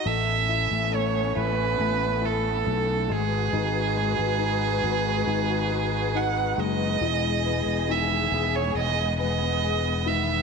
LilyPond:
<<
  \new Staff \with { instrumentName = "Violin" } { \time 4/4 \key a \lydian \tempo 4 = 69 e''4 cis''8 b'4 a'4 gis'8~ | gis'2. fis''8 dis''8~ | dis''4 e''8. cis''16 dis''8 dis''4 e''8 | }
  \new Staff \with { instrumentName = "String section" } { \time 4/4 \key a \lydian <a b cis'>2.~ <a b cis'>8 <gis fis' b'>8~ | <gis fis' b'>1 | <gis b gis'>1 | }
  \new Staff \with { instrumentName = "Grand piano" } { \time 4/4 \key a \lydian a8 e'8 a8 e'8 a8 e'8 a8 gis8 | dis'8 gis8 dis'8 gis8 dis'8 gis8 dis'8 gis8 | e8 b8 dis8 gis'4 b8 gis'8 dis8 | }
  \new Staff \with { instrumentName = "Fretless electric bass" } { \clef bass \time 4/4 \key a \lydian a,,8. a,,8. a,,8 a,,4 b,,8 gis,,8 | gis,,8. gis,,8. gis,,8 gis,,4. fis,,8 | e,,8. e,,8. e,,8 e,,2 | }
>>